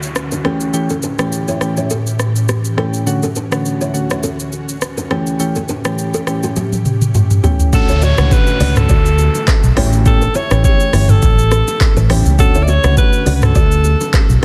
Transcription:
Already playing: ambient pad D2 D3 C#4 F#4, downlifter
0.03 shaker
0.15 cross-stick, shaker
0.32 nylon-string guitar D4 B4, shaker
0.44 ambient pad A2 E3 G4, synth keys E3 A3 C#4 G4, nylon-string guitar C#4 A4, cross-stick
0.60 shaker
0.73 synth keys E3 A3 C#4 G4, shaker
0.89 nylon-string guitar C#4 A4, shaker
1.03 nylon-string guitar D4 B4, shaker
1.18 synth keys E3 A3 C#4 G4, cross-stick, shaker
1.32 shaker
1.48 nylon-string guitar E4 C#5, shaker
1.61 synth keys E3 A3 C#4 G4, cross-stick, shaker
1.77 nylon-string guitar E4 C#5, shaker
1.90 nylon-string guitar C#4 A4, shaker
2.07 shaker
2.19 cross-stick, shaker
2.36 shaker
2.49 nylon-string guitar C#4 G4, cross-stick, shaker
2.65 shaker
2.77 synth keys E3 A3 C#4 G4, nylon-string guitar C#4 A4, cross-stick
2.94 shaker
3.06 ambient pad D2 D3 C#4 F#4, synth keys D3 A3 C#4 F#4, shaker
3.23 nylon-string guitar C#4 A4, shaker
3.36 nylon-string guitar D4 B4, shaker
3.51 synth keys D3 A3 C#4 F#4, cross-stick, shaker
3.65 shaker
3.81 nylon-string guitar E4 C#5, shaker
3.93 synth keys D3 A3 C#4 F#4, shaker
4.10 nylon-string guitar E4 C#5, cross-stick, shaker
4.23 nylon-string guitar C#4 A4, shaker
4.40 shaker
4.52 shaker
4.69 shaker
4.82 cross-stick, shaker
4.97 nylon-string guitar D4 B4, shaker
5.10 ambient pad A2 E3 G4, synth keys E3 A3 C#4 G4, nylon-string guitar C#4 A4, cross-stick
5.27 shaker
5.40 synth keys E3 A3 C#4 G4, shaker
5.55 nylon-string guitar C#4 A4, shaker
5.69 nylon-string guitar D4 B4, shaker
5.85 synth keys E3 A3 C#4 G4, cross-stick, shaker
5.98 shaker
6.14 nylon-string guitar C#4 A4, shaker
6.27 synth keys E3 A3 C#4 G4, cross-stick, shaker
6.43 nylon-string guitar A3 F#4, shaker
6.56 nylon-string guitar C#4 G4, high tom, shaker
6.72 high tom, shaker
6.85 mid tom, shaker
7.02 mid tom, shaker
7.14 nylon-string guitar A3 F#4, mid tom, shaker
7.31 mid tom, shaker
7.43 synth keys E3 A3 C#4 G4, nylon-string guitar B3 G4, floor tom, shaker
7.60 floor tom, shaker
7.73 fingered electric bass D2, ambient pad D3 A3 C#4 F#4, synth keys D3 A3 C#4 F#4, alto saxophone A4, kick, downlifter, low conga, shaker
7.89 nylon-string guitar E4 C#5, shaker
8.02 nylon-string guitar F#4 D5, alto saxophone C#5, shaker
8.18 fingered electric bass C#2, synth keys D3 A3 C#4 F#4, cross-stick, low bongo, shaker
8.31 alto saxophone B4, kick, high bongo, shaker
8.47 shaker
8.60 fingered electric bass C#2, synth keys D3 A3 C#4 F#4, nylon-string guitar F#4 D5, open hi-hat, shaker
8.76 alto saxophone A4, cross-stick, mid tom, shaker
8.89 fingered electric bass D2, nylon-string guitar F#4 D5, kick, low conga, shaker
9.06 shaker
9.18 high bongo, shaker
9.35 low bongo, shaker
9.47 kick, cross-stick, clap, high bongo, shaker
9.64 fingered electric bass B1, shaker
9.76 fingered electric bass A1, synth keys E3 A3 C#4 G4, nylon-string guitar E4 C#5, ambient pad G4, cross-stick, open hi-hat, low bongo, low conga
9.93 high bongo, shaker
10.05 synth keys E3 A3 C#4 G4, alto saxophone A4, kick, low conga, shaker
10.22 nylon-string guitar D4 B4, shaker
10.35 nylon-string guitar E4 C#5, alto saxophone C#5, shaker
10.51 fingered electric bass A1, synth keys E3 A3 C#4 G4, cross-stick, low bongo, shaker
10.64 alto saxophone C#5, kick, high bongo, shaker
10.80 shaker
10.93 fingered electric bass G1, synth keys E3 A3 C#4 G4, nylon-string guitar E4 C#5, cross-stick, open hi-hat, shaker
11.09 alto saxophone A4, mid tom, shaker
11.22 fingered electric bass A1, kick, low conga, shaker
11.39 shaker
11.51 nylon-string guitar C#4 A4, cross-stick, high bongo, shaker
11.68 low bongo, shaker
11.81 kick, cross-stick, clap, high bongo, shaker
11.96 fingered electric bass A1, nylon-string guitar D4 B4, shaker
12.09 synth keys E3 A3 C#4 G4, nylon-string guitar E4 C#5, cross-stick, open hi-hat, low bongo, low conga
12.26 fingered electric bass C#2, high bongo, shaker
12.39 fingered electric bass D2, synth keys D3 A3 C#4 F#4, ambient pad D3 F#4, alto saxophone A4, kick, low conga, shaker
12.55 nylon-string guitar E4 C#5, shaker
12.63 alto saxophone D5
12.68 nylon-string guitar F#4 D5, alto saxophone C#5, shaker
12.83 fingered electric bass C#2, synth keys D3 A3 C#4 F#4, cross-stick, low bongo, shaker
12.97 alto saxophone B4, kick, high bongo, shaker
13.13 shaker
13.26 fingered electric bass C#2, synth keys D3 A3 C#4 F#4, nylon-string guitar F#4 D5, open hi-hat, shaker
13.35 alto saxophone B4
13.42 alto saxophone A4, cross-stick, mid tom, shaker
13.55 fingered electric bass D2, nylon-string guitar F#4 D5, kick, low conga, shaker
13.72 shaker
13.84 high bongo, shaker
14.01 low bongo, shaker
14.13 kick, cross-stick, clap, high bongo, shaker
14.30 fingered electric bass B1, shaker

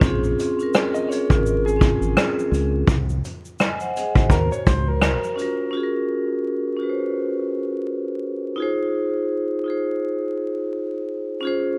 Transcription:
Already playing: clean electric guitar C5
0.00 fingered electric bass A#1, vibraphone C4 C#4, kick, shaker
0.05 vibraphone F4 G#4
0.24 shaker
0.39 closed hi-hat, shaker
0.57 vibraphone C4 C#4, shaker
0.61 vibraphone F4 A#4
0.74 cross-stick, shaker
0.94 clean electric guitar D#5, shaker
1.07 vibraphone C4 C#4, clean electric guitar C#5
1.11 vibraphone F4 G#4, closed hi-hat, shaker
1.30 fingered electric bass G#1, clean electric guitar A#4, kick, shaker
1.46 shaker
1.66 clean electric guitar G#4, shaker
1.77 vibraphone C4 C#4, kick
1.82 vibraphone F4 G#4, closed hi-hat, shaker
2.01 fingered electric bass G#1, shaker
2.17 cross-stick, shaker
2.39 shaker
2.51 fingered electric bass C#2, closed hi-hat, shaker
2.87 fingered electric bass C2, kick, shaker
3.09 shaker
3.25 closed hi-hat, shaker
3.45 shaker
3.59 vibraphone D#5 G#5, cross-stick, shaker
3.80 vibraphone C5 F#5, shaker
3.96 vibraphone G#4 D#5, closed hi-hat, shaker
4.15 fingered electric bass G#1, vibraphone F#4 C5, kick
4.30 fingered electric bass D#2, clean electric guitar A#4, kick, shaker
4.52 clean electric guitar C#5, muted fingered electric bass stroke, shaker
4.67 fingered electric bass C#2, clean electric guitar C5, kick, closed hi-hat, shaker
4.88 clean electric guitar A#4
5.01 cross-stick, shaker
5.24 shaker
5.35 vibraphone C#4 F4, closed hi-hat, shaker
5.40 vibraphone F#4 A#4
5.71 vibraphone C#4 F4
5.75 vibraphone F#4 G#4
5.83 vibraphone A#4
6.77 vibraphone C#4 F4
6.81 vibraphone F#4 B4
6.90 vibraphone C5
8.56 vibraphone D#4 F4
8.60 vibraphone G#4 C5
9.64 vibraphone D#4 F4 G#4
9.70 vibraphone C5
11.41 vibraphone C#4 F4
11.45 vibraphone G#4 C5

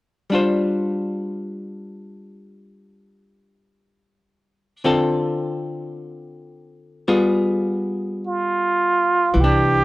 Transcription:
0.30 hollow-body jazz guitar G3 D4 F4
0.35 hollow-body jazz guitar C5
4.84 hollow-body jazz guitar D3 C4 F4 A4
7.08 hollow-body jazz guitar G3 B3 F4 G#4
8.27 muted trumpet F4
9.34 upright bass C2, hollow-body jazz guitar E3, brush sweep
9.40 hollow-body jazz guitar D4, muted trumpet G4

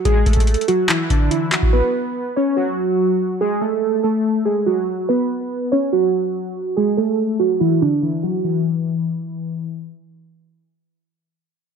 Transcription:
0.05 synth keys G#3 G#4, kick, closed hi-hat
0.26 synth keys A3 A4, kick, closed hi-hat
0.33 kick, closed hi-hat
0.40 closed hi-hat
0.47 closed hi-hat
0.54 closed hi-hat
0.61 closed hi-hat
0.68 synth keys F#3 F#4, closed hi-hat
0.89 synth keys E3 E4, clap, closed hi-hat
1.10 synth keys D3 D4, kick, closed hi-hat
1.31 synth keys E3 E4, closed hi-hat
1.52 synth keys F#3 F#4, clap, closed hi-hat
1.63 kick
1.73 synth keys B3 B4
2.36 synth keys C#4 C#5
2.57 synth keys F#3 F#4
3.41 synth keys G#3 G#4
3.61 synth keys A3 A4
4.04 synth keys A3 A4
4.45 synth keys G#3 G#4
4.66 synth keys F#3 F#4
5.09 synth keys B3 B4
5.72 synth keys C#4 C#5
5.93 synth keys F#3 F#4
6.77 synth keys G#3 G#4
6.97 synth keys A3 A4
7.40 synth keys F#3 F#4
7.60 synth keys E3 E4
7.82 synth keys D3 D4
8.02 synth keys E3 E4
8.23 synth keys F#3 F#4
8.44 synth keys E3

